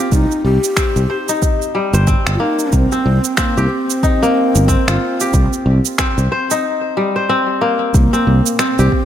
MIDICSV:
0, 0, Header, 1, 6, 480
1, 0, Start_track
1, 0, Key_signature, -3, "minor"
1, 0, Tempo, 652174
1, 86, Time_signature, 4, 2, 24, 8
1, 6661, End_track
2, 0, Start_track
2, 0, Title_t, "Ambient pad"
2, 0, Program_c, 0, 92
2, 5842, Note_on_c, 0, 58, 90
2, 6236, Note_on_c, 0, 67, 92
2, 6513, Note_on_c, 0, 75, 88
2, 6661, Note_off_c, 0, 58, 0
2, 6661, Note_off_c, 0, 67, 0
2, 6661, Note_off_c, 0, 75, 0
2, 6661, End_track
3, 0, Start_track
3, 0, Title_t, "Kora"
3, 0, Program_c, 1, 46
3, 0, Note_on_c, 1, 58, 94
3, 0, Note_on_c, 1, 60, 92
3, 0, Note_on_c, 1, 63, 80
3, 0, Note_on_c, 1, 65, 71
3, 0, Note_on_c, 1, 67, 74
3, 319, Note_off_c, 1, 63, 0
3, 563, Note_off_c, 1, 60, 0
3, 566, Note_on_c, 1, 60, 89
3, 687, Note_off_c, 1, 58, 0
3, 807, Note_on_c, 1, 72, 70
3, 861, Note_off_c, 1, 65, 0
3, 949, Note_on_c, 1, 63, 75
3, 1026, Note_off_c, 1, 67, 0
3, 1285, Note_on_c, 1, 55, 70
3, 1425, Note_off_c, 1, 72, 0
3, 1428, Note_on_c, 1, 72, 76
3, 1522, Note_off_c, 1, 60, 0
3, 1525, Note_on_c, 1, 60, 96
3, 1764, Note_on_c, 1, 58, 73
3, 2143, Note_off_c, 1, 63, 0
3, 2147, Note_off_c, 1, 60, 0
3, 2150, Note_on_c, 1, 60, 89
3, 2302, Note_off_c, 1, 72, 0
3, 2483, Note_off_c, 1, 60, 0
3, 2486, Note_on_c, 1, 60, 97
3, 2630, Note_on_c, 1, 67, 77
3, 2967, Note_on_c, 1, 63, 84
3, 3008, Note_off_c, 1, 55, 0
3, 3107, Note_off_c, 1, 58, 0
3, 3110, Note_on_c, 1, 58, 102
3, 3441, Note_off_c, 1, 60, 0
3, 3444, Note_on_c, 1, 60, 94
3, 3591, Note_on_c, 1, 65, 73
3, 3669, Note_off_c, 1, 67, 0
3, 3834, Note_on_c, 1, 67, 77
3, 4161, Note_off_c, 1, 63, 0
3, 4405, Note_off_c, 1, 60, 0
3, 4408, Note_on_c, 1, 60, 97
3, 4530, Note_off_c, 1, 58, 0
3, 4649, Note_on_c, 1, 72, 73
3, 4705, Note_off_c, 1, 65, 0
3, 4792, Note_on_c, 1, 63, 72
3, 4873, Note_off_c, 1, 67, 0
3, 5129, Note_on_c, 1, 55, 68
3, 5265, Note_off_c, 1, 72, 0
3, 5268, Note_on_c, 1, 72, 73
3, 5365, Note_off_c, 1, 60, 0
3, 5368, Note_on_c, 1, 60, 104
3, 5603, Note_on_c, 1, 58, 78
3, 5883, Note_off_c, 1, 55, 0
3, 5982, Note_off_c, 1, 60, 0
3, 5984, Note_on_c, 1, 60, 87
3, 5986, Note_off_c, 1, 63, 0
3, 6143, Note_off_c, 1, 72, 0
3, 6320, Note_off_c, 1, 60, 0
3, 6323, Note_on_c, 1, 60, 100
3, 6469, Note_on_c, 1, 67, 77
3, 6661, Note_off_c, 1, 58, 0
3, 6661, Note_off_c, 1, 60, 0
3, 6661, Note_off_c, 1, 67, 0
3, 6661, End_track
4, 0, Start_track
4, 0, Title_t, "Ney"
4, 0, Program_c, 2, 77
4, 96, Note_on_c, 2, 63, 104
4, 314, Note_off_c, 2, 63, 0
4, 331, Note_on_c, 2, 67, 118
4, 1259, Note_off_c, 2, 67, 0
4, 1726, Note_on_c, 2, 65, 82
4, 1766, Note_on_c, 2, 63, 101
4, 1777, Note_off_c, 2, 65, 0
4, 1999, Note_on_c, 2, 60, 105
4, 2010, Note_off_c, 2, 63, 0
4, 2482, Note_on_c, 2, 58, 99
4, 2493, Note_off_c, 2, 60, 0
4, 2714, Note_on_c, 2, 60, 97
4, 2725, Note_off_c, 2, 58, 0
4, 4880, Note_off_c, 2, 60, 0
4, 5851, Note_on_c, 2, 58, 96
4, 6333, Note_on_c, 2, 60, 93
4, 6344, Note_off_c, 2, 58, 0
4, 6661, Note_off_c, 2, 60, 0
4, 6661, End_track
5, 0, Start_track
5, 0, Title_t, "Fretless electric bass"
5, 0, Program_c, 3, 35
5, 89, Note_on_c, 3, 36, 101
5, 182, Note_off_c, 3, 36, 0
5, 327, Note_on_c, 3, 36, 81
5, 421, Note_off_c, 3, 36, 0
5, 707, Note_on_c, 3, 36, 93
5, 772, Note_off_c, 3, 36, 0
5, 1423, Note_on_c, 3, 31, 98
5, 1570, Note_off_c, 3, 31, 0
5, 1672, Note_on_c, 3, 31, 79
5, 1735, Note_off_c, 3, 31, 0
5, 2008, Note_on_c, 3, 36, 104
5, 2101, Note_off_c, 3, 36, 0
5, 2249, Note_on_c, 3, 36, 89
5, 2342, Note_off_c, 3, 36, 0
5, 2632, Note_on_c, 3, 36, 99
5, 2695, Note_off_c, 3, 36, 0
5, 3352, Note_on_c, 3, 31, 93
5, 3494, Note_off_c, 3, 31, 0
5, 3589, Note_on_c, 3, 31, 81
5, 3654, Note_off_c, 3, 31, 0
5, 3928, Note_on_c, 3, 36, 102
5, 4021, Note_off_c, 3, 36, 0
5, 4164, Note_on_c, 3, 36, 91
5, 4259, Note_off_c, 3, 36, 0
5, 4546, Note_on_c, 3, 36, 92
5, 4612, Note_off_c, 3, 36, 0
5, 5848, Note_on_c, 3, 36, 99
5, 5941, Note_off_c, 3, 36, 0
5, 6087, Note_on_c, 3, 36, 84
5, 6181, Note_off_c, 3, 36, 0
5, 6469, Note_on_c, 3, 36, 93
5, 6534, Note_off_c, 3, 36, 0
5, 6661, End_track
6, 0, Start_track
6, 0, Title_t, "Drums"
6, 88, Note_on_c, 9, 36, 100
6, 90, Note_on_c, 9, 69, 53
6, 162, Note_off_c, 9, 36, 0
6, 163, Note_off_c, 9, 69, 0
6, 231, Note_on_c, 9, 69, 31
6, 305, Note_off_c, 9, 69, 0
6, 470, Note_on_c, 9, 69, 60
6, 544, Note_off_c, 9, 69, 0
6, 564, Note_on_c, 9, 26, 70
6, 566, Note_on_c, 9, 69, 51
6, 568, Note_on_c, 9, 36, 92
6, 637, Note_off_c, 9, 26, 0
6, 640, Note_off_c, 9, 69, 0
6, 641, Note_off_c, 9, 36, 0
6, 710, Note_on_c, 9, 69, 30
6, 784, Note_off_c, 9, 69, 0
6, 947, Note_on_c, 9, 69, 64
6, 1021, Note_off_c, 9, 69, 0
6, 1047, Note_on_c, 9, 36, 98
6, 1048, Note_on_c, 9, 69, 53
6, 1121, Note_off_c, 9, 36, 0
6, 1122, Note_off_c, 9, 69, 0
6, 1192, Note_on_c, 9, 69, 30
6, 1265, Note_off_c, 9, 69, 0
6, 1429, Note_on_c, 9, 69, 61
6, 1502, Note_off_c, 9, 69, 0
6, 1527, Note_on_c, 9, 69, 50
6, 1528, Note_on_c, 9, 36, 99
6, 1601, Note_off_c, 9, 36, 0
6, 1601, Note_off_c, 9, 69, 0
6, 1668, Note_on_c, 9, 26, 72
6, 1670, Note_on_c, 9, 69, 31
6, 1741, Note_off_c, 9, 26, 0
6, 1744, Note_off_c, 9, 69, 0
6, 1909, Note_on_c, 9, 69, 59
6, 1982, Note_off_c, 9, 69, 0
6, 2007, Note_on_c, 9, 36, 97
6, 2007, Note_on_c, 9, 69, 50
6, 2080, Note_off_c, 9, 69, 0
6, 2081, Note_off_c, 9, 36, 0
6, 2149, Note_on_c, 9, 69, 31
6, 2223, Note_off_c, 9, 69, 0
6, 2388, Note_on_c, 9, 69, 66
6, 2462, Note_off_c, 9, 69, 0
6, 2482, Note_on_c, 9, 26, 78
6, 2485, Note_on_c, 9, 69, 54
6, 2488, Note_on_c, 9, 36, 90
6, 2556, Note_off_c, 9, 26, 0
6, 2558, Note_off_c, 9, 69, 0
6, 2561, Note_off_c, 9, 36, 0
6, 2631, Note_on_c, 9, 69, 29
6, 2704, Note_off_c, 9, 69, 0
6, 2872, Note_on_c, 9, 69, 65
6, 2945, Note_off_c, 9, 69, 0
6, 2968, Note_on_c, 9, 36, 101
6, 2971, Note_on_c, 9, 69, 51
6, 3041, Note_off_c, 9, 36, 0
6, 3044, Note_off_c, 9, 69, 0
6, 3116, Note_on_c, 9, 69, 30
6, 3189, Note_off_c, 9, 69, 0
6, 3352, Note_on_c, 9, 69, 63
6, 3426, Note_off_c, 9, 69, 0
6, 3449, Note_on_c, 9, 36, 97
6, 3452, Note_on_c, 9, 69, 53
6, 3522, Note_off_c, 9, 36, 0
6, 3525, Note_off_c, 9, 69, 0
6, 3591, Note_on_c, 9, 26, 72
6, 3594, Note_on_c, 9, 69, 31
6, 3665, Note_off_c, 9, 26, 0
6, 3668, Note_off_c, 9, 69, 0
6, 3831, Note_on_c, 9, 69, 58
6, 3905, Note_off_c, 9, 69, 0
6, 3928, Note_on_c, 9, 36, 103
6, 3928, Note_on_c, 9, 69, 51
6, 4001, Note_off_c, 9, 69, 0
6, 4002, Note_off_c, 9, 36, 0
6, 4071, Note_on_c, 9, 69, 32
6, 4145, Note_off_c, 9, 69, 0
6, 4308, Note_on_c, 9, 69, 63
6, 4381, Note_off_c, 9, 69, 0
6, 4404, Note_on_c, 9, 26, 81
6, 4407, Note_on_c, 9, 69, 54
6, 4408, Note_on_c, 9, 36, 92
6, 4478, Note_off_c, 9, 26, 0
6, 4480, Note_off_c, 9, 69, 0
6, 4481, Note_off_c, 9, 36, 0
6, 4550, Note_on_c, 9, 69, 31
6, 4624, Note_off_c, 9, 69, 0
6, 4791, Note_on_c, 9, 69, 61
6, 4864, Note_off_c, 9, 69, 0
6, 5847, Note_on_c, 9, 36, 126
6, 5848, Note_on_c, 9, 69, 55
6, 5921, Note_off_c, 9, 36, 0
6, 5921, Note_off_c, 9, 69, 0
6, 5989, Note_on_c, 9, 69, 34
6, 6062, Note_off_c, 9, 69, 0
6, 6228, Note_on_c, 9, 69, 65
6, 6302, Note_off_c, 9, 69, 0
6, 6323, Note_on_c, 9, 26, 83
6, 6325, Note_on_c, 9, 69, 56
6, 6396, Note_off_c, 9, 26, 0
6, 6399, Note_off_c, 9, 69, 0
6, 6467, Note_on_c, 9, 69, 33
6, 6541, Note_off_c, 9, 69, 0
6, 6567, Note_on_c, 9, 36, 53
6, 6640, Note_off_c, 9, 36, 0
6, 6661, End_track
0, 0, End_of_file